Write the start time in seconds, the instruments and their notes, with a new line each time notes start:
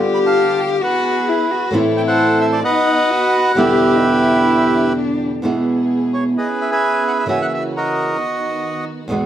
Already playing: string section D3 B3 F4 G4, nylon-string guitar D3 G3 B3 F4, cello G4
0.14 bandoneon B5
0.26 bandoneon F5 A5
0.60 bandoneon G5
0.72 bandoneon F5
0.81 string section B3 E4 G#4, cello F#4, bandoneon B4 F#5
1.29 cello E4
1.51 cello F#4
1.71 nylon-string guitar A2 E3 A3 C4 E4, string section C4 E4 A4, cello E4
1.97 bandoneon G5
2.08 bandoneon A4 C5 F#5
2.41 bandoneon E5
2.53 bandoneon D5
2.64 string section B3 D#4 F#4, cello D#4, bandoneon B4 D#5 F#5
3.10 cello F#4
3.55 nylon-string guitar E2 B2 D3 G3 B3 E4, string section D4 E4 G4, cello G4, bandoneon G4 B4 E5
3.96 cello D#4
4.04 cello E4
4.98 cello D4
5.42 nylon-string guitar E2 B2 E3 G#3 B3 E4, string section B3 E4 G#4
6.14 bandoneon C#5
6.36 string section B3 C#4 E4, bandoneon G#4 B4 D#5
6.61 bandoneon E5
6.72 bandoneon B4 E5 G#5
7.08 bandoneon F#5
7.19 bandoneon E5
7.26 nylon-string guitar C#3 E3 A#3 C#4 F#4, string section C#3 A#3 E4 F#4, bandoneon E5
7.30 bandoneon G#5
7.42 bandoneon F#5
7.54 bandoneon E5
7.77 bandoneon F#4 A#4 D#5
8.18 string section D#3 B3 D#4 F#4
9.08 nylon-string guitar E2 B2 E3 G#3 B3, string section G#3 E4 F#4
9.12 nylon-string guitar F#4